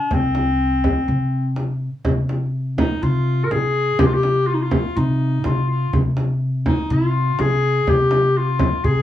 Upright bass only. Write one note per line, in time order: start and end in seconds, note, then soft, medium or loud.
0.11 0.91 C2 medium
1.08 1.88 C3 medium
2.04 2.84 C3 medium
3.03 3.42 C3 loud
3.51 3.91 C3 medium
3.99 4.78 C3 medium
4.97 5.36 C3 loud
5.45 5.85 C3 medium
5.93 6.72 C3 medium
6.90 7.30 C3 loud
7.39 7.79 C3 medium
7.88 8.67 C3 medium
8.84 9.02 C3 loud